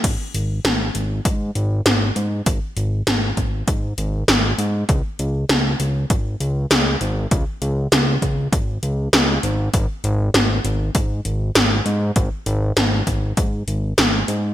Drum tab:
CC |x-------|--------|--------|--------|
HH |xxxxxxxx|xxxxxxxx|xxxxxxxx|xxxxxxxx|
SD |--o---o-|--o---o-|--o---o-|--o---o-|
BD |o---o---|o--oo---|o---o---|o--oo---|

CC |--------|--------|
HH |xxxxxxxx|xxxxxxxx|
SD |--o---o-|--o---o-|
BD |o---o---|o--oo---|